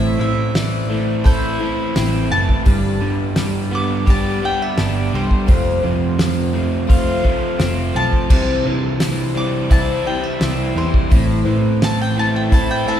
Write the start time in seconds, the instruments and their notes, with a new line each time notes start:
Already playing: picked electric bass A1, steel-string acoustic guitar A2 E3 A3 C4 E4 C5, mandolin E5
0.19 picked electric bass A2, overdriven electric guitar E3, steel-string acoustic guitar A3 C4 E4 C5, mandolin E5
0.53 overdriven electric guitar E3, steel-string acoustic guitar A3 C4 E4 C5, mandolin D5, snare, open hi-hat
0.89 steel-string acoustic guitar A3 C4 E4 C5
1.24 steel-string acoustic guitar A2 E3 A3 C4 E4 C5, mandolin A4 C5, kick, open hi-hat
1.59 steel-string acoustic guitar A3 C4 E4 C5
1.94 picked electric bass A1, steel-string acoustic guitar A3 C4 E4 C5, snare, open hi-hat
2.30 picked electric bass F#1, overdriven electric guitar E3, steel-string acoustic guitar A3 C4 E4 C5, mandolin A5
2.49 kick
2.65 picked electric bass G1, overdriven electric guitar G2, steel-string acoustic guitar G3 D4 G4 B4, kick, open hi-hat
3.01 picked electric bass G2, overdriven electric guitar D3, steel-string acoustic guitar D4 G4 B4
3.36 steel-string acoustic guitar G3 D4 G4 B4, snare, open hi-hat
3.71 overdriven electric guitar B3, steel-string acoustic guitar D4 G4 B4, mandolin D6
4.06 steel-string acoustic guitar G3 D4 G4 B4, mandolin A5, kick, open hi-hat
4.41 overdriven electric guitar B3, steel-string acoustic guitar D4 G4 B4
4.45 mandolin G5
4.62 mandolin E5
4.76 picked electric bass G1, steel-string acoustic guitar G3 D4 G4 B4, snare, open hi-hat
5.13 picked electric bass C2, overdriven electric guitar G3, steel-string acoustic guitar D4 G4, mandolin C5
5.31 kick
5.46 picked electric bass F1, overdriven electric guitar F2, steel-string acoustic guitar F3 A3 C4 F4 C5, kick, open hi-hat
5.82 picked electric bass F2, overdriven electric guitar C3, steel-string acoustic guitar C4 F4 C5
6.18 overdriven electric guitar F3, steel-string acoustic guitar A3 C4 F4 C5, snare, open hi-hat
6.53 overdriven electric guitar A3, steel-string acoustic guitar C4 F4 C5
6.87 steel-string acoustic guitar F3 A3 C4 F4 C5, kick, open hi-hat
7.22 overdriven electric guitar A3, steel-string acoustic guitar C4 F4 C5, kick
7.58 picked electric bass F1, steel-string acoustic guitar A3 C4 F4 C5, snare, open hi-hat
7.94 picked electric bass B1, overdriven electric guitar F3, steel-string acoustic guitar C4 F4 C5, mandolin A5
8.13 kick
8.29 picked electric bass C2, steel-string acoustic guitar C3 E3 G3 C4 E4 C5, kick, crash
8.64 picked electric bass C3, overdriven electric guitar E3, steel-string acoustic guitar G3 C4 E4 C5
9.00 overdriven electric guitar E3, steel-string acoustic guitar G3 C4 E4 C5, snare, open hi-hat
9.34 steel-string acoustic guitar G3 C4 E4 C5, mandolin D6
9.71 steel-string acoustic guitar C3 E3 G3 C4 E4 C5, mandolin A5, kick, open hi-hat
10.06 steel-string acoustic guitar G3 C4 E4 C5, mandolin G5
10.24 mandolin E5
10.41 picked electric bass C2, steel-string acoustic guitar G3 C4 E4 C5, snare, open hi-hat
10.74 picked electric bass E2, overdriven electric guitar E3, steel-string acoustic guitar G3 C4 E4 C5, mandolin C5
10.94 kick
11.09 picked electric bass A1, steel-string acoustic guitar A2 E3 A3 C4 E4 C5, kick, open hi-hat
11.45 picked electric bass A2, overdriven electric guitar E3, steel-string acoustic guitar A3 C4 E4 C5
11.79 overdriven electric guitar E3, steel-string acoustic guitar A3 C4 E4 C5, snare, open hi-hat
11.84 mandolin A5
12.02 mandolin G5
12.15 steel-string acoustic guitar A3 C4 E4 C5, mandolin A5
12.36 mandolin G5
12.49 steel-string acoustic guitar A2 E3 A3 C4 E4 C5, kick, open hi-hat
12.54 mandolin A5
12.71 mandolin G5
12.86 steel-string acoustic guitar A3 C4 E4 C5, mandolin E5 A5